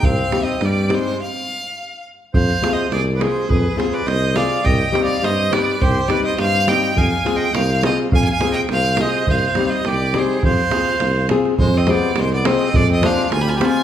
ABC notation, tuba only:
X:1
M:2/4
L:1/8
Q:"Swing 16ths" 1/4=104
K:none
V:1 name="Tuba" clef=bass
C,, z G,,2 | z4 | F,, z C,,2 | F,, z C,,2 |
C,, z G,,2 | C,, z G,,2 | F,, z C,,2 | F,, z C,,2 |
C,, z C,,2 | F,, z C,,2 | F,,2 C,,2 | F,,2 D,,2 |]